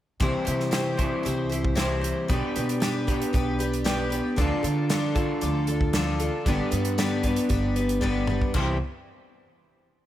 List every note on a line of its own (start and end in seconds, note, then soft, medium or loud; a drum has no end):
0.20 0.31 C2 medium
0.20 0.46 C3 medium
0.20 0.97 E3 medium
0.20 0.99 G3 medium
0.20 0.47 C4 medium
0.20 0.47 E4 medium
0.20 0.45 G4 medium
0.20 0.44 C5 medium
0.20 kick loud
0.20 closed hi-hat medium
0.45 1.11 C3 medium
0.45 0.72 E4 medium
0.45 0.72 G4 medium
0.45 0.72 C5 medium
0.45 closed hi-hat medium
0.60 snare soft
0.71 0.98 C3 medium
0.71 0.98 C4 medium
0.71 0.99 E4 medium
0.71 0.98 G4 medium
0.71 0.96 C5 medium
0.71 snare loud
0.71 closed hi-hat medium
0.97 1.76 C3 medium
0.97 1.76 E3 medium
0.97 1.76 G3 medium
0.97 1.76 C4 medium
0.97 1.24 E4 soft
0.97 1.24 G4 medium
0.97 1.24 C5 medium
0.97 kick medium
0.97 closed hi-hat medium
1.23 2.11 C2 medium
1.23 1.50 C4 medium
1.23 1.51 E4 medium
1.23 1.50 G4 medium
1.23 1.48 C5 medium
1.23 closed hi-hat medium
1.50 1.75 E4 soft
1.50 1.75 G4 medium
1.50 1.76 C5 medium
1.50 closed hi-hat medium
1.65 kick medium
1.75 2.02 C3 medium
1.75 2.28 E3 medium
1.75 2.28 G3 medium
1.75 2.03 C4 medium
1.75 2.03 E4 medium
1.75 2.02 G4 medium
1.75 2.00 C5 medium
1.75 snare loud
1.75 closed hi-hat medium
2.01 2.29 E4 medium
2.01 2.28 G4 soft
2.01 2.28 C5 medium
2.01 closed hi-hat medium
2.28 2.40 B1 medium
2.28 2.55 B3 medium
2.28 2.56 D4 medium
2.28 2.55 G4 medium
2.28 2.54 B4 medium
2.28 kick loud
2.28 closed hi-hat medium
2.56 3.20 B2 medium
2.56 2.81 D4 medium
2.56 2.81 G4 medium
2.56 2.81 B4 medium
2.56 closed hi-hat medium
2.69 closed hi-hat medium
2.80 3.07 B3 medium
2.80 3.08 D4 loud
2.80 3.07 G4 medium
2.80 3.06 B4 medium
2.80 snare loud
2.80 closed hi-hat medium
3.07 3.32 D4 soft
3.07 3.34 G4 medium
3.07 3.33 B4 medium
3.07 kick medium
3.07 closed hi-hat medium
3.11 3.85 B3 medium
3.22 closed hi-hat medium
3.33 4.19 B1 medium
3.33 3.59 B3 medium
3.33 3.60 D4 medium
3.33 3.59 G4 medium
3.33 3.58 B4 medium
3.33 kick medium
3.33 closed hi-hat medium
3.59 3.84 D4 medium
3.59 3.84 G4 medium
3.59 3.85 B4 medium
3.59 closed hi-hat medium
3.73 closed hi-hat medium
3.84 4.11 B3 medium
3.84 4.12 D4 medium
3.84 4.11 G4 loud
3.84 4.09 B4 loud
3.84 snare loud
3.84 closed hi-hat medium
4.10 4.37 D4 soft
4.10 4.38 G4 medium
4.10 4.37 B4 medium
4.10 closed hi-hat medium
4.36 4.49 D2 medium
4.36 4.63 D3 medium
4.36 4.64 F3 medium
4.36 4.64 D4 medium
4.36 4.64 F4 medium
4.36 4.62 A4 medium
4.36 kick loud
4.36 closed hi-hat medium
4.63 5.28 D3 medium
4.63 4.90 D4 medium
4.63 4.90 F4 medium
4.63 4.89 A4 medium
4.63 closed hi-hat medium
4.89 5.16 D3 medium
4.89 5.16 F3 medium
4.89 5.16 D4 medium
4.89 5.16 F4 medium
4.89 5.14 A4 medium
4.89 snare loud
4.89 closed hi-hat medium
5.15 5.92 D3 medium
5.15 5.41 D4 soft
5.15 5.42 F4 medium
5.15 5.42 A4 medium
5.15 kick medium
5.15 closed hi-hat medium
5.41 6.27 D2 medium
5.41 5.68 F3 medium
5.41 5.68 D4 medium
5.41 5.68 F4 medium
5.41 5.67 A4 medium
5.41 closed hi-hat medium
5.67 5.95 F4 medium
5.67 5.94 A4 medium
5.67 closed hi-hat medium
5.71 5.94 D4 medium
5.81 kick medium
5.93 6.20 D3 medium
5.93 6.21 F3 medium
5.93 6.21 D4 medium
5.93 6.21 F4 loud
5.93 6.19 A4 loud
5.93 snare loud
5.93 closed hi-hat medium
6.20 6.47 D4 soft
6.20 6.47 F4 medium
6.20 6.46 A4 medium
6.20 closed hi-hat medium
6.46 6.57 G1 loud
6.46 6.73 G2 medium
6.46 6.73 D3 medium
6.46 6.73 G3 medium
6.46 6.72 B3 medium
6.46 6.70 D4 medium
6.46 6.70 B4 medium
6.46 kick loud
6.46 closed hi-hat medium
6.71 7.36 G2 medium
6.71 6.97 G3 medium
6.71 6.98 B3 medium
6.71 6.98 D4 medium
6.71 6.98 B4 medium
6.71 closed hi-hat medium
6.85 closed hi-hat medium
6.98 7.24 G2 medium
6.98 7.25 D3 medium
6.98 7.25 G3 medium
6.98 7.25 B3 medium
6.98 7.25 D4 medium
6.98 7.24 B4 loud
6.98 snare loud
6.98 closed hi-hat medium
7.23 7.49 B3 medium
7.23 7.50 D4 medium
7.23 7.51 B4 medium
7.23 kick medium
7.23 closed hi-hat medium
7.28 7.48 G3 soft
7.36 closed hi-hat medium
7.49 8.36 G1 medium
7.49 7.76 G3 medium
7.49 7.77 B3 medium
7.49 7.75 D4 medium
7.49 7.75 B4 medium
7.49 kick medium
7.49 closed hi-hat medium
7.76 8.01 G3 soft
7.76 8.02 B3 medium
7.76 8.02 D4 medium
7.76 8.02 B4 medium
7.76 closed hi-hat medium
7.89 closed hi-hat medium
8.01 8.28 G2 medium
8.01 8.29 D3 medium
8.01 8.29 G3 medium
8.01 8.29 B3 loud
8.01 8.28 D4 medium
8.01 8.27 B4 medium
8.01 kick medium
8.27 8.54 G3 soft
8.27 8.55 B3 medium
8.27 8.56 D4 medium
8.27 8.55 B4 medium
8.27 mid tom medium
8.42 kick medium
8.54 8.79 C2 medium
8.54 8.76 C3 medium
8.54 8.76 E3 medium
8.54 8.76 G3 medium
8.54 8.77 C4 medium
8.54 8.77 E4 medium
8.54 8.77 G4 medium
8.54 8.77 C5 loud
8.54 kick loud
8.54 crash medium